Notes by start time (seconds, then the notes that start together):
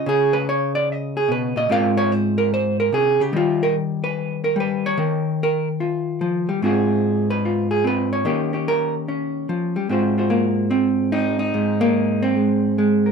Already playing: F4 A#4
0.06 C#3 G#4
0.33 B4
0.49 C#5
0.75 D5
0.92 D#5
1.17 G#4
1.28 B2 B4
1.56 A#2 D#5
1.69 G#2 C4 F4 A#4 F5
1.97 C#5
2.12 C5
2.38 A#4
2.54 C5
2.80 A#4
2.92 C3 G#4
3.20 C#3 G4
3.33 D#3 G3 F4
3.63 A#4
4.04 B4
4.44 A#4
4.56 G3
4.60 B4
4.86 C#5
4.98 D#3 A#4
5.43 A#4
5.80 F4
6.21 F3
6.49 G3
6.62 G#2 C4 F4 F#4 G#4
7.30 B4
7.45 F4
7.71 G#4
7.84 C4 B4
8.13 C#5
8.25 D#3 A#3 C#4 G4
8.53 C#4 G4
8.68 A#4
9.08 C#4
9.49 F3
9.76 G3
9.89 G#2 C4 F4 F#4 C5
10.18 F4 F#4 C5
10.30 A#3
10.71 C4
11.12 C4 D#4
11.39 D#4
11.54 G#2
11.81 A#3
12.22 C4
12.37 G#3
12.78 G#3
13.06 A#4